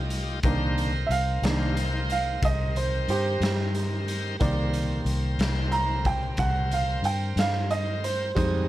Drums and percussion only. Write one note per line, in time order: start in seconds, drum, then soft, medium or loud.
0.10 closed hi-hat medium
0.43 kick loud
0.43 closed hi-hat medium
0.78 closed hi-hat medium
1.11 closed hi-hat medium
1.43 snare loud
1.43 closed hi-hat medium
1.77 closed hi-hat medium
2.10 closed hi-hat medium
2.42 kick loud
2.42 closed hi-hat medium
2.76 closed hi-hat medium
3.08 closed hi-hat medium
3.42 snare medium
3.42 closed hi-hat medium
3.75 closed hi-hat medium
4.08 closed hi-hat medium
4.40 kick loud
4.40 closed hi-hat medium
4.73 closed hi-hat medium
5.06 closed hi-hat medium
5.39 snare loud
5.39 closed hi-hat medium
5.72 closed hi-hat medium
6.05 kick medium
6.05 closed hi-hat medium
6.37 kick loud
6.37 closed hi-hat medium
6.71 closed hi-hat medium
7.04 closed hi-hat medium
7.37 snare medium
7.37 closed hi-hat medium
7.71 closed hi-hat medium
8.04 closed hi-hat medium
8.37 kick loud
8.37 closed hi-hat medium